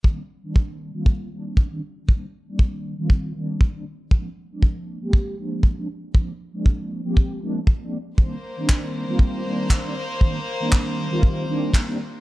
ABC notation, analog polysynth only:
X:1
M:4/4
L:1/16
Q:"Swing 16ths" 1/4=118
K:Cm
V:1 name="Analog polysynth"
[E,G,B,CD] z2 [E,G,B,CD]4 [E,G,B,CF]3 [E,G,B,CD]3 [E,G,B,CD] z2 | [E,G,B,CD] z2 [E,G,B,CD]4 [E,G,B,CF]3 [E,G,B,CD]3 [E,G,B,CD] z2 | [F,A,B,CD] z2 [F,A,B,CD]4 [F,A,B,CG]3 [F,A,B,CD]3 [F,A,B,CD] z2 | [F,A,B,CD] z2 [F,A,B,CD]4 [F,A,B,CG]3 [F,A,B,CD] z2 [F,A,B,CD] z2 |
[E,G,B,CD] z2 [E,G,B,CD]4 [E,G,B,CF]3 [E,G,B,CD]3 [E,G,B,CD] z2 | [E,G,B,CD] z2 [E,G,B,CD]4 [E,G,B,CF]3 [E,G,B,CD]3 [E,G,B,CD] z2 |]